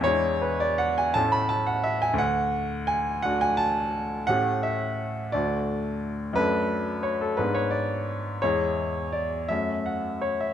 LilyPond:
\new Staff \with { instrumentName = "Grand piano" } { \time 6/8 \key d \lydian \tempo 4. = 57 << { cis''8 b'16 d''16 fis''16 gis''16 a''16 b''16 a''16 fis''16 e''16 gis''16 | fis''4 gis''8 fis''16 gis''16 a''4 | fis''8 e''4 d''8 r4 | b'4 cis''16 a'16 b'16 cis''16 d''4 |
cis''4 d''8 e''8 fis''8 cis''16 e''16 | } \\ { <e, gis d' e'>4. <a, a cis' e'>4. | d,4. <a d' fis'>4. | <a, a cis' g'>4. <d, a d' fis'>4. | <fis, a d' a'>4. <gis, b d' gis'>4. |
<e, gis e' gis'>4. <fis, a cis' fis'>4. | } >> }